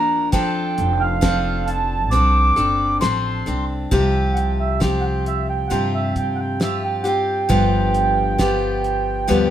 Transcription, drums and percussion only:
0, 0, Header, 1, 2, 480
1, 0, Start_track
1, 0, Tempo, 895522
1, 178, Time_signature, 4, 2, 24, 8
1, 5094, End_track
2, 0, Start_track
2, 0, Title_t, "Drums"
2, 173, Note_on_c, 9, 42, 63
2, 177, Note_on_c, 9, 36, 85
2, 227, Note_off_c, 9, 42, 0
2, 230, Note_off_c, 9, 36, 0
2, 417, Note_on_c, 9, 42, 49
2, 471, Note_off_c, 9, 42, 0
2, 657, Note_on_c, 9, 38, 85
2, 657, Note_on_c, 9, 42, 63
2, 658, Note_on_c, 9, 36, 62
2, 711, Note_off_c, 9, 38, 0
2, 711, Note_off_c, 9, 42, 0
2, 712, Note_off_c, 9, 36, 0
2, 899, Note_on_c, 9, 42, 46
2, 952, Note_off_c, 9, 42, 0
2, 1141, Note_on_c, 9, 42, 66
2, 1194, Note_off_c, 9, 42, 0
2, 1378, Note_on_c, 9, 42, 51
2, 1432, Note_off_c, 9, 42, 0
2, 1620, Note_on_c, 9, 38, 81
2, 1620, Note_on_c, 9, 42, 70
2, 1673, Note_off_c, 9, 38, 0
2, 1673, Note_off_c, 9, 42, 0
2, 1860, Note_on_c, 9, 42, 55
2, 1914, Note_off_c, 9, 42, 0
2, 2100, Note_on_c, 9, 36, 76
2, 2100, Note_on_c, 9, 42, 61
2, 2153, Note_off_c, 9, 36, 0
2, 2154, Note_off_c, 9, 42, 0
2, 2341, Note_on_c, 9, 42, 48
2, 2395, Note_off_c, 9, 42, 0
2, 2580, Note_on_c, 9, 36, 61
2, 2581, Note_on_c, 9, 38, 79
2, 2581, Note_on_c, 9, 42, 66
2, 2633, Note_off_c, 9, 36, 0
2, 2634, Note_off_c, 9, 38, 0
2, 2634, Note_off_c, 9, 42, 0
2, 2821, Note_on_c, 9, 42, 44
2, 2875, Note_off_c, 9, 42, 0
2, 3061, Note_on_c, 9, 42, 62
2, 3115, Note_off_c, 9, 42, 0
2, 3301, Note_on_c, 9, 42, 49
2, 3354, Note_off_c, 9, 42, 0
2, 3542, Note_on_c, 9, 38, 80
2, 3542, Note_on_c, 9, 42, 58
2, 3595, Note_off_c, 9, 38, 0
2, 3595, Note_off_c, 9, 42, 0
2, 3779, Note_on_c, 9, 42, 50
2, 3833, Note_off_c, 9, 42, 0
2, 4018, Note_on_c, 9, 42, 54
2, 4019, Note_on_c, 9, 36, 80
2, 4072, Note_off_c, 9, 42, 0
2, 4073, Note_off_c, 9, 36, 0
2, 4259, Note_on_c, 9, 42, 45
2, 4312, Note_off_c, 9, 42, 0
2, 4499, Note_on_c, 9, 36, 71
2, 4499, Note_on_c, 9, 38, 89
2, 4499, Note_on_c, 9, 42, 61
2, 4552, Note_off_c, 9, 38, 0
2, 4552, Note_off_c, 9, 42, 0
2, 4553, Note_off_c, 9, 36, 0
2, 4740, Note_on_c, 9, 42, 44
2, 4793, Note_off_c, 9, 42, 0
2, 4980, Note_on_c, 9, 42, 65
2, 5034, Note_off_c, 9, 42, 0
2, 5094, End_track
0, 0, End_of_file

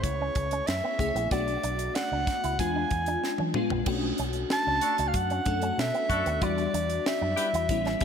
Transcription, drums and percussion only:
0, 0, Header, 1, 2, 480
1, 0, Start_track
1, 0, Tempo, 637620
1, 993, Time_signature, 4, 2, 24, 8
1, 6057, End_track
2, 0, Start_track
2, 0, Title_t, "Drums"
2, 27, Note_on_c, 9, 36, 92
2, 27, Note_on_c, 9, 42, 86
2, 102, Note_off_c, 9, 36, 0
2, 103, Note_off_c, 9, 42, 0
2, 265, Note_on_c, 9, 42, 71
2, 269, Note_on_c, 9, 36, 93
2, 340, Note_off_c, 9, 42, 0
2, 344, Note_off_c, 9, 36, 0
2, 384, Note_on_c, 9, 42, 48
2, 460, Note_off_c, 9, 42, 0
2, 507, Note_on_c, 9, 42, 78
2, 516, Note_on_c, 9, 38, 118
2, 582, Note_off_c, 9, 42, 0
2, 591, Note_off_c, 9, 38, 0
2, 746, Note_on_c, 9, 36, 88
2, 754, Note_on_c, 9, 42, 69
2, 822, Note_off_c, 9, 36, 0
2, 829, Note_off_c, 9, 42, 0
2, 873, Note_on_c, 9, 42, 45
2, 948, Note_off_c, 9, 42, 0
2, 988, Note_on_c, 9, 42, 78
2, 989, Note_on_c, 9, 36, 102
2, 1063, Note_off_c, 9, 42, 0
2, 1064, Note_off_c, 9, 36, 0
2, 1112, Note_on_c, 9, 42, 34
2, 1187, Note_off_c, 9, 42, 0
2, 1231, Note_on_c, 9, 42, 60
2, 1306, Note_off_c, 9, 42, 0
2, 1346, Note_on_c, 9, 42, 51
2, 1422, Note_off_c, 9, 42, 0
2, 1470, Note_on_c, 9, 42, 83
2, 1476, Note_on_c, 9, 38, 117
2, 1546, Note_off_c, 9, 42, 0
2, 1551, Note_off_c, 9, 38, 0
2, 1710, Note_on_c, 9, 42, 78
2, 1711, Note_on_c, 9, 36, 100
2, 1721, Note_on_c, 9, 38, 36
2, 1786, Note_off_c, 9, 36, 0
2, 1786, Note_off_c, 9, 42, 0
2, 1796, Note_off_c, 9, 38, 0
2, 1835, Note_on_c, 9, 42, 56
2, 1910, Note_off_c, 9, 42, 0
2, 1950, Note_on_c, 9, 36, 99
2, 1953, Note_on_c, 9, 42, 89
2, 2026, Note_off_c, 9, 36, 0
2, 2028, Note_off_c, 9, 42, 0
2, 2188, Note_on_c, 9, 42, 72
2, 2192, Note_on_c, 9, 36, 85
2, 2263, Note_off_c, 9, 42, 0
2, 2267, Note_off_c, 9, 36, 0
2, 2306, Note_on_c, 9, 42, 45
2, 2381, Note_off_c, 9, 42, 0
2, 2436, Note_on_c, 9, 38, 52
2, 2511, Note_off_c, 9, 38, 0
2, 2547, Note_on_c, 9, 48, 51
2, 2622, Note_off_c, 9, 48, 0
2, 2666, Note_on_c, 9, 45, 86
2, 2741, Note_off_c, 9, 45, 0
2, 2788, Note_on_c, 9, 43, 69
2, 2863, Note_off_c, 9, 43, 0
2, 2906, Note_on_c, 9, 49, 79
2, 2910, Note_on_c, 9, 36, 114
2, 2981, Note_off_c, 9, 49, 0
2, 2985, Note_off_c, 9, 36, 0
2, 3146, Note_on_c, 9, 42, 53
2, 3222, Note_off_c, 9, 42, 0
2, 3260, Note_on_c, 9, 42, 41
2, 3335, Note_off_c, 9, 42, 0
2, 3390, Note_on_c, 9, 38, 101
2, 3465, Note_off_c, 9, 38, 0
2, 3624, Note_on_c, 9, 42, 87
2, 3700, Note_off_c, 9, 42, 0
2, 3751, Note_on_c, 9, 42, 58
2, 3826, Note_off_c, 9, 42, 0
2, 3868, Note_on_c, 9, 42, 94
2, 3870, Note_on_c, 9, 36, 86
2, 3943, Note_off_c, 9, 42, 0
2, 3945, Note_off_c, 9, 36, 0
2, 3991, Note_on_c, 9, 42, 30
2, 4066, Note_off_c, 9, 42, 0
2, 4107, Note_on_c, 9, 42, 69
2, 4112, Note_on_c, 9, 36, 86
2, 4182, Note_off_c, 9, 42, 0
2, 4187, Note_off_c, 9, 36, 0
2, 4228, Note_on_c, 9, 42, 50
2, 4303, Note_off_c, 9, 42, 0
2, 4361, Note_on_c, 9, 38, 116
2, 4436, Note_off_c, 9, 38, 0
2, 4475, Note_on_c, 9, 42, 30
2, 4550, Note_off_c, 9, 42, 0
2, 4589, Note_on_c, 9, 36, 93
2, 4594, Note_on_c, 9, 42, 63
2, 4665, Note_off_c, 9, 36, 0
2, 4670, Note_off_c, 9, 42, 0
2, 4713, Note_on_c, 9, 42, 45
2, 4788, Note_off_c, 9, 42, 0
2, 4830, Note_on_c, 9, 42, 85
2, 4832, Note_on_c, 9, 36, 109
2, 4905, Note_off_c, 9, 42, 0
2, 4907, Note_off_c, 9, 36, 0
2, 4954, Note_on_c, 9, 42, 39
2, 5029, Note_off_c, 9, 42, 0
2, 5076, Note_on_c, 9, 42, 65
2, 5151, Note_off_c, 9, 42, 0
2, 5191, Note_on_c, 9, 42, 46
2, 5266, Note_off_c, 9, 42, 0
2, 5317, Note_on_c, 9, 38, 121
2, 5393, Note_off_c, 9, 38, 0
2, 5551, Note_on_c, 9, 42, 79
2, 5626, Note_off_c, 9, 42, 0
2, 5677, Note_on_c, 9, 42, 53
2, 5752, Note_off_c, 9, 42, 0
2, 5790, Note_on_c, 9, 36, 95
2, 5790, Note_on_c, 9, 42, 98
2, 5865, Note_off_c, 9, 36, 0
2, 5865, Note_off_c, 9, 42, 0
2, 5910, Note_on_c, 9, 42, 28
2, 5918, Note_on_c, 9, 38, 27
2, 5985, Note_off_c, 9, 42, 0
2, 5993, Note_off_c, 9, 38, 0
2, 6027, Note_on_c, 9, 42, 74
2, 6031, Note_on_c, 9, 36, 91
2, 6057, Note_off_c, 9, 36, 0
2, 6057, Note_off_c, 9, 42, 0
2, 6057, End_track
0, 0, End_of_file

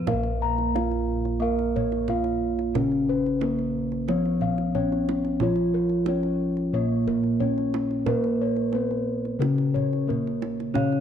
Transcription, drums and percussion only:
0, 0, Header, 1, 2, 480
1, 0, Start_track
1, 0, Tempo, 666667
1, 53, Time_signature, 4, 2, 24, 8
1, 7922, End_track
2, 0, Start_track
2, 0, Title_t, "Kendang"
2, 51, Note_on_c, 9, 63, 58
2, 51, Note_on_c, 9, 64, 88
2, 123, Note_off_c, 9, 63, 0
2, 123, Note_off_c, 9, 64, 0
2, 169, Note_on_c, 9, 62, 22
2, 241, Note_off_c, 9, 62, 0
2, 420, Note_on_c, 9, 62, 21
2, 492, Note_off_c, 9, 62, 0
2, 545, Note_on_c, 9, 63, 44
2, 617, Note_off_c, 9, 63, 0
2, 658, Note_on_c, 9, 62, 18
2, 730, Note_off_c, 9, 62, 0
2, 901, Note_on_c, 9, 62, 21
2, 973, Note_off_c, 9, 62, 0
2, 1143, Note_on_c, 9, 62, 21
2, 1215, Note_off_c, 9, 62, 0
2, 1269, Note_on_c, 9, 64, 66
2, 1341, Note_off_c, 9, 64, 0
2, 1383, Note_on_c, 9, 62, 23
2, 1455, Note_off_c, 9, 62, 0
2, 1497, Note_on_c, 9, 64, 68
2, 1569, Note_off_c, 9, 64, 0
2, 1614, Note_on_c, 9, 62, 25
2, 1686, Note_off_c, 9, 62, 0
2, 1863, Note_on_c, 9, 62, 26
2, 1935, Note_off_c, 9, 62, 0
2, 1981, Note_on_c, 9, 63, 50
2, 1981, Note_on_c, 9, 64, 83
2, 2053, Note_off_c, 9, 63, 0
2, 2053, Note_off_c, 9, 64, 0
2, 2102, Note_on_c, 9, 62, 21
2, 2174, Note_off_c, 9, 62, 0
2, 2349, Note_on_c, 9, 62, 22
2, 2421, Note_off_c, 9, 62, 0
2, 2457, Note_on_c, 9, 63, 52
2, 2529, Note_off_c, 9, 63, 0
2, 2582, Note_on_c, 9, 62, 18
2, 2654, Note_off_c, 9, 62, 0
2, 2821, Note_on_c, 9, 62, 19
2, 2893, Note_off_c, 9, 62, 0
2, 2941, Note_on_c, 9, 63, 58
2, 3013, Note_off_c, 9, 63, 0
2, 3064, Note_on_c, 9, 62, 19
2, 3136, Note_off_c, 9, 62, 0
2, 3175, Note_on_c, 9, 64, 52
2, 3247, Note_off_c, 9, 64, 0
2, 3299, Note_on_c, 9, 62, 24
2, 3371, Note_off_c, 9, 62, 0
2, 3419, Note_on_c, 9, 64, 57
2, 3491, Note_off_c, 9, 64, 0
2, 3544, Note_on_c, 9, 62, 25
2, 3616, Note_off_c, 9, 62, 0
2, 3663, Note_on_c, 9, 63, 54
2, 3735, Note_off_c, 9, 63, 0
2, 3777, Note_on_c, 9, 62, 23
2, 3849, Note_off_c, 9, 62, 0
2, 3888, Note_on_c, 9, 63, 52
2, 3888, Note_on_c, 9, 64, 76
2, 3960, Note_off_c, 9, 63, 0
2, 3960, Note_off_c, 9, 64, 0
2, 4001, Note_on_c, 9, 62, 23
2, 4073, Note_off_c, 9, 62, 0
2, 4244, Note_on_c, 9, 62, 17
2, 4316, Note_off_c, 9, 62, 0
2, 4363, Note_on_c, 9, 63, 50
2, 4435, Note_off_c, 9, 63, 0
2, 4486, Note_on_c, 9, 62, 18
2, 4558, Note_off_c, 9, 62, 0
2, 4729, Note_on_c, 9, 62, 19
2, 4801, Note_off_c, 9, 62, 0
2, 5094, Note_on_c, 9, 64, 61
2, 5166, Note_off_c, 9, 64, 0
2, 5210, Note_on_c, 9, 62, 19
2, 5282, Note_off_c, 9, 62, 0
2, 5331, Note_on_c, 9, 64, 61
2, 5403, Note_off_c, 9, 64, 0
2, 5456, Note_on_c, 9, 62, 22
2, 5528, Note_off_c, 9, 62, 0
2, 5573, Note_on_c, 9, 63, 60
2, 5645, Note_off_c, 9, 63, 0
2, 5694, Note_on_c, 9, 62, 25
2, 5766, Note_off_c, 9, 62, 0
2, 5806, Note_on_c, 9, 63, 59
2, 5806, Note_on_c, 9, 64, 85
2, 5878, Note_off_c, 9, 63, 0
2, 5878, Note_off_c, 9, 64, 0
2, 5932, Note_on_c, 9, 62, 23
2, 6004, Note_off_c, 9, 62, 0
2, 6167, Note_on_c, 9, 62, 19
2, 6239, Note_off_c, 9, 62, 0
2, 6281, Note_on_c, 9, 63, 40
2, 6353, Note_off_c, 9, 63, 0
2, 6414, Note_on_c, 9, 62, 18
2, 6486, Note_off_c, 9, 62, 0
2, 6660, Note_on_c, 9, 62, 19
2, 6732, Note_off_c, 9, 62, 0
2, 6781, Note_on_c, 9, 63, 46
2, 6853, Note_off_c, 9, 63, 0
2, 6898, Note_on_c, 9, 62, 21
2, 6970, Note_off_c, 9, 62, 0
2, 7025, Note_on_c, 9, 64, 52
2, 7097, Note_off_c, 9, 64, 0
2, 7150, Note_on_c, 9, 62, 21
2, 7222, Note_off_c, 9, 62, 0
2, 7274, Note_on_c, 9, 64, 57
2, 7346, Note_off_c, 9, 64, 0
2, 7397, Note_on_c, 9, 62, 23
2, 7469, Note_off_c, 9, 62, 0
2, 7503, Note_on_c, 9, 63, 47
2, 7575, Note_off_c, 9, 63, 0
2, 7633, Note_on_c, 9, 62, 23
2, 7705, Note_off_c, 9, 62, 0
2, 7742, Note_on_c, 9, 63, 59
2, 7742, Note_on_c, 9, 64, 73
2, 7814, Note_off_c, 9, 63, 0
2, 7814, Note_off_c, 9, 64, 0
2, 7865, Note_on_c, 9, 62, 19
2, 7922, Note_off_c, 9, 62, 0
2, 7922, End_track
0, 0, End_of_file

